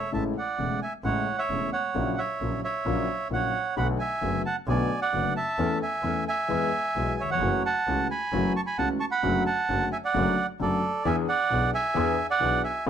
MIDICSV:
0, 0, Header, 1, 4, 480
1, 0, Start_track
1, 0, Key_signature, 3, "major"
1, 0, Tempo, 454545
1, 146, Time_signature, 4, 2, 24, 8
1, 13620, End_track
2, 0, Start_track
2, 0, Title_t, "Bandoneon"
2, 0, Program_c, 0, 23
2, 0, Note_on_c, 0, 73, 51
2, 0, Note_on_c, 0, 76, 68
2, 113, Note_off_c, 0, 73, 0
2, 130, Note_off_c, 0, 76, 0
2, 141, Note_on_c, 0, 81, 47
2, 146, Note_on_c, 0, 76, 42
2, 250, Note_off_c, 0, 81, 0
2, 254, Note_off_c, 0, 76, 0
2, 400, Note_on_c, 0, 78, 53
2, 412, Note_on_c, 0, 74, 43
2, 841, Note_off_c, 0, 78, 0
2, 847, Note_off_c, 0, 74, 0
2, 866, Note_on_c, 0, 80, 52
2, 882, Note_on_c, 0, 76, 42
2, 974, Note_off_c, 0, 80, 0
2, 987, Note_off_c, 0, 76, 0
2, 1099, Note_on_c, 0, 78, 56
2, 1110, Note_on_c, 0, 73, 45
2, 1444, Note_off_c, 0, 73, 0
2, 1462, Note_on_c, 0, 76, 65
2, 1466, Note_on_c, 0, 73, 47
2, 1474, Note_off_c, 0, 78, 0
2, 1799, Note_off_c, 0, 76, 0
2, 1801, Note_off_c, 0, 73, 0
2, 1823, Note_on_c, 0, 78, 53
2, 1829, Note_on_c, 0, 73, 47
2, 2273, Note_off_c, 0, 73, 0
2, 2301, Note_on_c, 0, 76, 56
2, 2318, Note_off_c, 0, 78, 0
2, 2318, Note_on_c, 0, 73, 47
2, 2748, Note_off_c, 0, 76, 0
2, 2758, Note_off_c, 0, 73, 0
2, 2787, Note_on_c, 0, 76, 62
2, 2793, Note_on_c, 0, 73, 50
2, 3461, Note_off_c, 0, 76, 0
2, 3464, Note_off_c, 0, 73, 0
2, 3518, Note_on_c, 0, 78, 61
2, 3535, Note_on_c, 0, 73, 49
2, 3956, Note_off_c, 0, 78, 0
2, 3965, Note_off_c, 0, 73, 0
2, 3980, Note_on_c, 0, 83, 66
2, 3988, Note_on_c, 0, 78, 44
2, 4088, Note_off_c, 0, 83, 0
2, 4094, Note_off_c, 0, 78, 0
2, 4216, Note_on_c, 0, 80, 72
2, 4228, Note_on_c, 0, 76, 56
2, 4664, Note_off_c, 0, 80, 0
2, 4671, Note_off_c, 0, 76, 0
2, 4705, Note_on_c, 0, 81, 68
2, 4715, Note_on_c, 0, 78, 49
2, 4812, Note_off_c, 0, 81, 0
2, 4819, Note_off_c, 0, 78, 0
2, 4949, Note_on_c, 0, 80, 69
2, 4957, Note_on_c, 0, 74, 58
2, 5279, Note_off_c, 0, 80, 0
2, 5283, Note_off_c, 0, 74, 0
2, 5298, Note_on_c, 0, 78, 72
2, 5299, Note_on_c, 0, 74, 54
2, 5633, Note_off_c, 0, 78, 0
2, 5634, Note_off_c, 0, 74, 0
2, 5662, Note_on_c, 0, 81, 70
2, 5668, Note_on_c, 0, 76, 60
2, 6107, Note_off_c, 0, 81, 0
2, 6111, Note_off_c, 0, 76, 0
2, 6148, Note_on_c, 0, 80, 72
2, 6151, Note_on_c, 0, 76, 54
2, 6592, Note_off_c, 0, 80, 0
2, 6593, Note_off_c, 0, 76, 0
2, 6631, Note_on_c, 0, 80, 76
2, 6643, Note_on_c, 0, 76, 58
2, 7556, Note_off_c, 0, 76, 0
2, 7606, Note_on_c, 0, 73, 50
2, 7608, Note_on_c, 0, 76, 66
2, 7621, Note_off_c, 0, 80, 0
2, 7710, Note_off_c, 0, 73, 0
2, 7711, Note_off_c, 0, 76, 0
2, 7717, Note_on_c, 0, 78, 72
2, 7733, Note_on_c, 0, 73, 59
2, 8050, Note_off_c, 0, 78, 0
2, 8058, Note_off_c, 0, 73, 0
2, 8082, Note_on_c, 0, 78, 56
2, 8087, Note_on_c, 0, 81, 74
2, 8525, Note_off_c, 0, 78, 0
2, 8528, Note_off_c, 0, 81, 0
2, 8563, Note_on_c, 0, 80, 65
2, 8566, Note_on_c, 0, 83, 73
2, 9005, Note_off_c, 0, 80, 0
2, 9007, Note_off_c, 0, 83, 0
2, 9041, Note_on_c, 0, 81, 56
2, 9041, Note_on_c, 0, 85, 79
2, 9093, Note_off_c, 0, 81, 0
2, 9094, Note_off_c, 0, 85, 0
2, 9151, Note_on_c, 0, 83, 77
2, 9153, Note_on_c, 0, 80, 61
2, 9264, Note_off_c, 0, 83, 0
2, 9265, Note_off_c, 0, 80, 0
2, 9274, Note_on_c, 0, 78, 53
2, 9276, Note_on_c, 0, 81, 74
2, 9382, Note_off_c, 0, 78, 0
2, 9384, Note_off_c, 0, 81, 0
2, 9503, Note_on_c, 0, 85, 76
2, 9507, Note_on_c, 0, 81, 54
2, 9559, Note_off_c, 0, 85, 0
2, 9563, Note_off_c, 0, 81, 0
2, 9623, Note_on_c, 0, 78, 62
2, 9625, Note_on_c, 0, 83, 73
2, 9963, Note_off_c, 0, 78, 0
2, 9964, Note_off_c, 0, 83, 0
2, 9993, Note_on_c, 0, 78, 66
2, 9995, Note_on_c, 0, 81, 72
2, 10440, Note_off_c, 0, 78, 0
2, 10442, Note_off_c, 0, 81, 0
2, 10478, Note_on_c, 0, 76, 58
2, 10478, Note_on_c, 0, 80, 73
2, 10531, Note_off_c, 0, 76, 0
2, 10532, Note_off_c, 0, 80, 0
2, 10610, Note_on_c, 0, 74, 63
2, 10615, Note_on_c, 0, 78, 75
2, 11049, Note_off_c, 0, 74, 0
2, 11051, Note_off_c, 0, 78, 0
2, 11211, Note_on_c, 0, 69, 55
2, 11218, Note_on_c, 0, 74, 65
2, 11648, Note_off_c, 0, 69, 0
2, 11677, Note_on_c, 0, 76, 56
2, 11680, Note_on_c, 0, 80, 70
2, 11699, Note_off_c, 0, 74, 0
2, 11784, Note_off_c, 0, 76, 0
2, 11786, Note_off_c, 0, 80, 0
2, 11918, Note_on_c, 0, 78, 82
2, 11923, Note_on_c, 0, 74, 62
2, 12360, Note_off_c, 0, 78, 0
2, 12363, Note_off_c, 0, 74, 0
2, 12402, Note_on_c, 0, 76, 66
2, 12403, Note_on_c, 0, 80, 87
2, 12953, Note_off_c, 0, 76, 0
2, 12954, Note_off_c, 0, 80, 0
2, 12993, Note_on_c, 0, 74, 70
2, 12997, Note_on_c, 0, 78, 95
2, 13326, Note_off_c, 0, 74, 0
2, 13328, Note_off_c, 0, 78, 0
2, 13347, Note_on_c, 0, 76, 65
2, 13357, Note_on_c, 0, 80, 76
2, 13571, Note_off_c, 0, 76, 0
2, 13576, Note_off_c, 0, 80, 0
2, 13620, End_track
3, 0, Start_track
3, 0, Title_t, "Grand piano"
3, 0, Program_c, 1, 0
3, 126, Note_on_c, 1, 49, 43
3, 126, Note_on_c, 1, 56, 41
3, 131, Note_on_c, 1, 45, 56
3, 133, Note_on_c, 1, 33, 53
3, 133, Note_on_c, 1, 57, 43
3, 133, Note_on_c, 1, 64, 57
3, 338, Note_off_c, 1, 49, 0
3, 338, Note_off_c, 1, 56, 0
3, 340, Note_off_c, 1, 45, 0
3, 341, Note_off_c, 1, 33, 0
3, 341, Note_off_c, 1, 64, 0
3, 342, Note_off_c, 1, 57, 0
3, 615, Note_on_c, 1, 49, 32
3, 616, Note_on_c, 1, 56, 25
3, 619, Note_on_c, 1, 40, 35
3, 620, Note_on_c, 1, 28, 38
3, 620, Note_on_c, 1, 57, 30
3, 622, Note_on_c, 1, 64, 30
3, 823, Note_off_c, 1, 49, 0
3, 823, Note_off_c, 1, 56, 0
3, 825, Note_off_c, 1, 28, 0
3, 825, Note_off_c, 1, 40, 0
3, 825, Note_off_c, 1, 57, 0
3, 826, Note_off_c, 1, 64, 0
3, 1105, Note_on_c, 1, 45, 58
3, 1105, Note_on_c, 1, 49, 42
3, 1108, Note_on_c, 1, 33, 52
3, 1110, Note_on_c, 1, 56, 47
3, 1110, Note_on_c, 1, 64, 50
3, 1111, Note_on_c, 1, 57, 46
3, 1308, Note_off_c, 1, 45, 0
3, 1308, Note_off_c, 1, 49, 0
3, 1310, Note_off_c, 1, 33, 0
3, 1310, Note_off_c, 1, 56, 0
3, 1310, Note_off_c, 1, 64, 0
3, 1311, Note_off_c, 1, 57, 0
3, 1582, Note_on_c, 1, 49, 35
3, 1586, Note_on_c, 1, 40, 42
3, 1587, Note_on_c, 1, 56, 32
3, 1588, Note_on_c, 1, 28, 40
3, 1591, Note_on_c, 1, 57, 30
3, 1594, Note_on_c, 1, 64, 38
3, 1786, Note_off_c, 1, 49, 0
3, 1788, Note_off_c, 1, 40, 0
3, 1789, Note_off_c, 1, 28, 0
3, 1789, Note_off_c, 1, 56, 0
3, 1791, Note_off_c, 1, 57, 0
3, 1792, Note_off_c, 1, 64, 0
3, 2054, Note_on_c, 1, 49, 57
3, 2056, Note_on_c, 1, 54, 46
3, 2059, Note_on_c, 1, 46, 60
3, 2059, Note_on_c, 1, 58, 47
3, 2065, Note_on_c, 1, 34, 62
3, 2066, Note_on_c, 1, 64, 55
3, 2261, Note_off_c, 1, 49, 0
3, 2262, Note_off_c, 1, 54, 0
3, 2263, Note_off_c, 1, 46, 0
3, 2263, Note_off_c, 1, 58, 0
3, 2266, Note_off_c, 1, 34, 0
3, 2267, Note_off_c, 1, 64, 0
3, 2543, Note_on_c, 1, 54, 28
3, 2544, Note_on_c, 1, 34, 40
3, 2545, Note_on_c, 1, 49, 33
3, 2546, Note_on_c, 1, 46, 41
3, 2547, Note_on_c, 1, 58, 30
3, 2550, Note_on_c, 1, 64, 36
3, 2745, Note_off_c, 1, 54, 0
3, 2746, Note_off_c, 1, 34, 0
3, 2746, Note_off_c, 1, 49, 0
3, 2747, Note_off_c, 1, 46, 0
3, 2747, Note_off_c, 1, 58, 0
3, 2749, Note_off_c, 1, 64, 0
3, 3014, Note_on_c, 1, 49, 47
3, 3018, Note_on_c, 1, 54, 48
3, 3019, Note_on_c, 1, 34, 62
3, 3020, Note_on_c, 1, 46, 59
3, 3020, Note_on_c, 1, 64, 61
3, 3021, Note_on_c, 1, 58, 45
3, 3220, Note_off_c, 1, 49, 0
3, 3222, Note_off_c, 1, 34, 0
3, 3222, Note_off_c, 1, 54, 0
3, 3223, Note_off_c, 1, 46, 0
3, 3223, Note_off_c, 1, 58, 0
3, 3223, Note_off_c, 1, 64, 0
3, 3489, Note_on_c, 1, 49, 36
3, 3490, Note_on_c, 1, 34, 43
3, 3495, Note_on_c, 1, 46, 47
3, 3495, Note_on_c, 1, 54, 33
3, 3495, Note_on_c, 1, 64, 42
3, 3496, Note_on_c, 1, 58, 32
3, 3697, Note_off_c, 1, 34, 0
3, 3697, Note_off_c, 1, 49, 0
3, 3699, Note_off_c, 1, 46, 0
3, 3699, Note_off_c, 1, 64, 0
3, 3700, Note_off_c, 1, 54, 0
3, 3700, Note_off_c, 1, 58, 0
3, 3977, Note_on_c, 1, 50, 54
3, 3979, Note_on_c, 1, 57, 49
3, 3981, Note_on_c, 1, 47, 62
3, 3984, Note_on_c, 1, 35, 68
3, 3984, Note_on_c, 1, 59, 52
3, 3984, Note_on_c, 1, 66, 61
3, 4180, Note_off_c, 1, 50, 0
3, 4181, Note_off_c, 1, 57, 0
3, 4182, Note_off_c, 1, 47, 0
3, 4183, Note_off_c, 1, 66, 0
3, 4184, Note_off_c, 1, 35, 0
3, 4184, Note_off_c, 1, 59, 0
3, 4448, Note_on_c, 1, 50, 34
3, 4453, Note_on_c, 1, 42, 40
3, 4453, Note_on_c, 1, 66, 42
3, 4454, Note_on_c, 1, 30, 44
3, 4457, Note_on_c, 1, 57, 33
3, 4459, Note_on_c, 1, 59, 35
3, 4656, Note_off_c, 1, 50, 0
3, 4658, Note_off_c, 1, 42, 0
3, 4659, Note_off_c, 1, 30, 0
3, 4659, Note_off_c, 1, 66, 0
3, 4660, Note_off_c, 1, 57, 0
3, 4661, Note_off_c, 1, 59, 0
3, 4942, Note_on_c, 1, 50, 55
3, 4943, Note_on_c, 1, 47, 65
3, 4943, Note_on_c, 1, 57, 50
3, 4943, Note_on_c, 1, 66, 60
3, 4944, Note_on_c, 1, 35, 66
3, 4946, Note_on_c, 1, 59, 53
3, 5143, Note_off_c, 1, 35, 0
3, 5143, Note_off_c, 1, 47, 0
3, 5143, Note_off_c, 1, 50, 0
3, 5143, Note_off_c, 1, 57, 0
3, 5143, Note_off_c, 1, 66, 0
3, 5144, Note_off_c, 1, 59, 0
3, 5415, Note_on_c, 1, 42, 43
3, 5415, Note_on_c, 1, 50, 36
3, 5417, Note_on_c, 1, 57, 35
3, 5417, Note_on_c, 1, 59, 39
3, 5419, Note_on_c, 1, 30, 45
3, 5420, Note_on_c, 1, 66, 43
3, 5619, Note_off_c, 1, 42, 0
3, 5619, Note_off_c, 1, 50, 0
3, 5620, Note_off_c, 1, 57, 0
3, 5620, Note_off_c, 1, 59, 0
3, 5621, Note_off_c, 1, 30, 0
3, 5621, Note_off_c, 1, 66, 0
3, 5896, Note_on_c, 1, 57, 49
3, 5900, Note_on_c, 1, 52, 70
3, 5903, Note_on_c, 1, 61, 57
3, 5904, Note_on_c, 1, 40, 64
3, 5905, Note_on_c, 1, 69, 62
3, 6099, Note_off_c, 1, 57, 0
3, 6103, Note_off_c, 1, 40, 0
3, 6103, Note_off_c, 1, 52, 0
3, 6103, Note_off_c, 1, 61, 0
3, 6104, Note_off_c, 1, 69, 0
3, 6371, Note_on_c, 1, 57, 35
3, 6372, Note_on_c, 1, 52, 45
3, 6376, Note_on_c, 1, 40, 40
3, 6377, Note_on_c, 1, 61, 31
3, 6377, Note_on_c, 1, 69, 42
3, 6578, Note_off_c, 1, 57, 0
3, 6580, Note_off_c, 1, 40, 0
3, 6581, Note_off_c, 1, 52, 0
3, 6581, Note_off_c, 1, 61, 0
3, 6581, Note_off_c, 1, 69, 0
3, 6846, Note_on_c, 1, 52, 59
3, 6847, Note_on_c, 1, 40, 64
3, 6851, Note_on_c, 1, 68, 60
3, 6852, Note_on_c, 1, 56, 49
3, 6852, Note_on_c, 1, 59, 48
3, 7057, Note_off_c, 1, 40, 0
3, 7059, Note_off_c, 1, 52, 0
3, 7059, Note_off_c, 1, 68, 0
3, 7060, Note_off_c, 1, 56, 0
3, 7060, Note_off_c, 1, 59, 0
3, 7344, Note_on_c, 1, 52, 36
3, 7344, Note_on_c, 1, 56, 34
3, 7345, Note_on_c, 1, 47, 43
3, 7346, Note_on_c, 1, 35, 42
3, 7346, Note_on_c, 1, 59, 35
3, 7354, Note_on_c, 1, 68, 39
3, 7548, Note_off_c, 1, 47, 0
3, 7548, Note_off_c, 1, 52, 0
3, 7548, Note_off_c, 1, 56, 0
3, 7549, Note_off_c, 1, 35, 0
3, 7549, Note_off_c, 1, 59, 0
3, 7553, Note_off_c, 1, 68, 0
3, 7636, Note_on_c, 1, 39, 32
3, 7702, Note_off_c, 1, 39, 0
3, 7707, Note_on_c, 1, 40, 46
3, 7760, Note_on_c, 1, 41, 49
3, 7768, Note_off_c, 1, 40, 0
3, 7825, Note_off_c, 1, 41, 0
3, 7829, Note_on_c, 1, 52, 61
3, 7831, Note_on_c, 1, 57, 48
3, 7832, Note_on_c, 1, 54, 66
3, 7832, Note_on_c, 1, 61, 55
3, 7833, Note_on_c, 1, 42, 61
3, 7840, Note_on_c, 1, 66, 63
3, 8032, Note_off_c, 1, 52, 0
3, 8033, Note_off_c, 1, 54, 0
3, 8033, Note_off_c, 1, 57, 0
3, 8033, Note_off_c, 1, 61, 0
3, 8034, Note_off_c, 1, 42, 0
3, 8037, Note_off_c, 1, 66, 0
3, 8319, Note_on_c, 1, 52, 37
3, 8323, Note_on_c, 1, 61, 31
3, 8324, Note_on_c, 1, 49, 45
3, 8326, Note_on_c, 1, 37, 41
3, 8326, Note_on_c, 1, 57, 31
3, 8329, Note_on_c, 1, 66, 39
3, 8518, Note_off_c, 1, 52, 0
3, 8520, Note_off_c, 1, 49, 0
3, 8520, Note_off_c, 1, 61, 0
3, 8521, Note_off_c, 1, 37, 0
3, 8521, Note_off_c, 1, 57, 0
3, 8523, Note_off_c, 1, 66, 0
3, 8793, Note_on_c, 1, 54, 69
3, 8796, Note_on_c, 1, 42, 62
3, 8796, Note_on_c, 1, 57, 48
3, 8797, Note_on_c, 1, 52, 55
3, 8800, Note_on_c, 1, 61, 50
3, 8802, Note_on_c, 1, 66, 65
3, 8995, Note_off_c, 1, 54, 0
3, 8996, Note_off_c, 1, 57, 0
3, 8997, Note_off_c, 1, 42, 0
3, 8997, Note_off_c, 1, 52, 0
3, 8999, Note_off_c, 1, 61, 0
3, 9000, Note_off_c, 1, 66, 0
3, 9276, Note_on_c, 1, 52, 40
3, 9276, Note_on_c, 1, 66, 46
3, 9277, Note_on_c, 1, 49, 45
3, 9278, Note_on_c, 1, 37, 44
3, 9279, Note_on_c, 1, 57, 33
3, 9280, Note_on_c, 1, 61, 41
3, 9477, Note_off_c, 1, 37, 0
3, 9477, Note_off_c, 1, 49, 0
3, 9477, Note_off_c, 1, 52, 0
3, 9477, Note_off_c, 1, 66, 0
3, 9478, Note_off_c, 1, 57, 0
3, 9479, Note_off_c, 1, 61, 0
3, 9748, Note_on_c, 1, 50, 62
3, 9750, Note_on_c, 1, 54, 72
3, 9750, Note_on_c, 1, 57, 59
3, 9751, Note_on_c, 1, 42, 74
3, 9752, Note_on_c, 1, 66, 66
3, 9754, Note_on_c, 1, 61, 50
3, 9953, Note_off_c, 1, 50, 0
3, 9954, Note_off_c, 1, 42, 0
3, 9954, Note_off_c, 1, 54, 0
3, 9954, Note_off_c, 1, 57, 0
3, 9955, Note_off_c, 1, 66, 0
3, 9956, Note_off_c, 1, 61, 0
3, 10235, Note_on_c, 1, 42, 44
3, 10236, Note_on_c, 1, 50, 39
3, 10237, Note_on_c, 1, 61, 35
3, 10241, Note_on_c, 1, 54, 46
3, 10241, Note_on_c, 1, 57, 36
3, 10241, Note_on_c, 1, 66, 46
3, 10437, Note_off_c, 1, 42, 0
3, 10437, Note_off_c, 1, 50, 0
3, 10438, Note_off_c, 1, 61, 0
3, 10439, Note_off_c, 1, 54, 0
3, 10440, Note_off_c, 1, 57, 0
3, 10440, Note_off_c, 1, 66, 0
3, 10709, Note_on_c, 1, 57, 60
3, 10710, Note_on_c, 1, 42, 70
3, 10710, Note_on_c, 1, 61, 48
3, 10712, Note_on_c, 1, 50, 55
3, 10712, Note_on_c, 1, 54, 63
3, 10713, Note_on_c, 1, 66, 73
3, 10913, Note_off_c, 1, 57, 0
3, 10913, Note_off_c, 1, 61, 0
3, 10914, Note_off_c, 1, 42, 0
3, 10914, Note_off_c, 1, 50, 0
3, 10915, Note_off_c, 1, 54, 0
3, 10915, Note_off_c, 1, 66, 0
3, 11186, Note_on_c, 1, 50, 42
3, 11189, Note_on_c, 1, 54, 53
3, 11191, Note_on_c, 1, 42, 52
3, 11192, Note_on_c, 1, 57, 36
3, 11194, Note_on_c, 1, 61, 42
3, 11197, Note_on_c, 1, 66, 48
3, 11391, Note_off_c, 1, 50, 0
3, 11392, Note_off_c, 1, 54, 0
3, 11394, Note_off_c, 1, 42, 0
3, 11394, Note_off_c, 1, 57, 0
3, 11395, Note_off_c, 1, 61, 0
3, 11397, Note_off_c, 1, 66, 0
3, 11667, Note_on_c, 1, 59, 65
3, 11668, Note_on_c, 1, 62, 61
3, 11670, Note_on_c, 1, 52, 76
3, 11671, Note_on_c, 1, 68, 73
3, 11674, Note_on_c, 1, 40, 78
3, 11871, Note_off_c, 1, 59, 0
3, 11871, Note_off_c, 1, 62, 0
3, 11873, Note_off_c, 1, 52, 0
3, 11873, Note_off_c, 1, 68, 0
3, 11874, Note_off_c, 1, 40, 0
3, 12143, Note_on_c, 1, 47, 46
3, 12143, Note_on_c, 1, 52, 41
3, 12143, Note_on_c, 1, 59, 33
3, 12146, Note_on_c, 1, 35, 47
3, 12147, Note_on_c, 1, 62, 39
3, 12148, Note_on_c, 1, 68, 44
3, 12348, Note_off_c, 1, 47, 0
3, 12348, Note_off_c, 1, 52, 0
3, 12348, Note_off_c, 1, 59, 0
3, 12350, Note_off_c, 1, 35, 0
3, 12351, Note_off_c, 1, 62, 0
3, 12351, Note_off_c, 1, 68, 0
3, 12611, Note_on_c, 1, 52, 73
3, 12616, Note_on_c, 1, 40, 82
3, 12616, Note_on_c, 1, 62, 58
3, 12618, Note_on_c, 1, 59, 60
3, 12621, Note_on_c, 1, 68, 73
3, 12824, Note_off_c, 1, 40, 0
3, 12824, Note_off_c, 1, 52, 0
3, 12824, Note_off_c, 1, 62, 0
3, 12825, Note_off_c, 1, 59, 0
3, 12827, Note_off_c, 1, 68, 0
3, 13095, Note_on_c, 1, 47, 52
3, 13095, Note_on_c, 1, 52, 44
3, 13096, Note_on_c, 1, 35, 54
3, 13096, Note_on_c, 1, 68, 51
3, 13099, Note_on_c, 1, 59, 43
3, 13099, Note_on_c, 1, 62, 45
3, 13303, Note_off_c, 1, 47, 0
3, 13303, Note_off_c, 1, 52, 0
3, 13304, Note_off_c, 1, 35, 0
3, 13304, Note_off_c, 1, 68, 0
3, 13305, Note_off_c, 1, 59, 0
3, 13306, Note_off_c, 1, 62, 0
3, 13584, Note_on_c, 1, 45, 83
3, 13584, Note_on_c, 1, 52, 65
3, 13585, Note_on_c, 1, 57, 66
3, 13587, Note_on_c, 1, 33, 79
3, 13588, Note_on_c, 1, 68, 76
3, 13589, Note_on_c, 1, 61, 62
3, 13620, Note_off_c, 1, 33, 0
3, 13620, Note_off_c, 1, 45, 0
3, 13620, Note_off_c, 1, 52, 0
3, 13620, Note_off_c, 1, 57, 0
3, 13620, Note_off_c, 1, 61, 0
3, 13620, Note_off_c, 1, 68, 0
3, 13620, End_track
4, 0, Start_track
4, 0, Title_t, "Double bass"
4, 0, Program_c, 2, 43
4, 150, Note_on_c, 2, 33, 55
4, 350, Note_off_c, 2, 33, 0
4, 623, Note_on_c, 2, 28, 42
4, 827, Note_off_c, 2, 28, 0
4, 1094, Note_on_c, 2, 33, 54
4, 1302, Note_off_c, 2, 33, 0
4, 1580, Note_on_c, 2, 28, 41
4, 1785, Note_off_c, 2, 28, 0
4, 2062, Note_on_c, 2, 34, 59
4, 2265, Note_off_c, 2, 34, 0
4, 2541, Note_on_c, 2, 34, 44
4, 2744, Note_off_c, 2, 34, 0
4, 3016, Note_on_c, 2, 34, 57
4, 3221, Note_off_c, 2, 34, 0
4, 3490, Note_on_c, 2, 34, 39
4, 3697, Note_off_c, 2, 34, 0
4, 3985, Note_on_c, 2, 35, 69
4, 4184, Note_off_c, 2, 35, 0
4, 4459, Note_on_c, 2, 30, 50
4, 4661, Note_off_c, 2, 30, 0
4, 4933, Note_on_c, 2, 35, 69
4, 5138, Note_off_c, 2, 35, 0
4, 5425, Note_on_c, 2, 30, 43
4, 5624, Note_off_c, 2, 30, 0
4, 5896, Note_on_c, 2, 40, 69
4, 6099, Note_off_c, 2, 40, 0
4, 6364, Note_on_c, 2, 40, 49
4, 6574, Note_off_c, 2, 40, 0
4, 6866, Note_on_c, 2, 40, 53
4, 7067, Note_off_c, 2, 40, 0
4, 7346, Note_on_c, 2, 35, 47
4, 7549, Note_off_c, 2, 35, 0
4, 7813, Note_on_c, 2, 30, 74
4, 8024, Note_off_c, 2, 30, 0
4, 8312, Note_on_c, 2, 37, 52
4, 8514, Note_off_c, 2, 37, 0
4, 8797, Note_on_c, 2, 30, 63
4, 8997, Note_off_c, 2, 30, 0
4, 9276, Note_on_c, 2, 37, 51
4, 9477, Note_off_c, 2, 37, 0
4, 9753, Note_on_c, 2, 30, 65
4, 9955, Note_off_c, 2, 30, 0
4, 10243, Note_on_c, 2, 30, 54
4, 10441, Note_off_c, 2, 30, 0
4, 10721, Note_on_c, 2, 30, 74
4, 10919, Note_off_c, 2, 30, 0
4, 11199, Note_on_c, 2, 30, 49
4, 11398, Note_off_c, 2, 30, 0
4, 11677, Note_on_c, 2, 40, 73
4, 11876, Note_off_c, 2, 40, 0
4, 12163, Note_on_c, 2, 35, 55
4, 12358, Note_off_c, 2, 35, 0
4, 12632, Note_on_c, 2, 40, 80
4, 12832, Note_off_c, 2, 40, 0
4, 13110, Note_on_c, 2, 35, 52
4, 13311, Note_off_c, 2, 35, 0
4, 13620, End_track
0, 0, End_of_file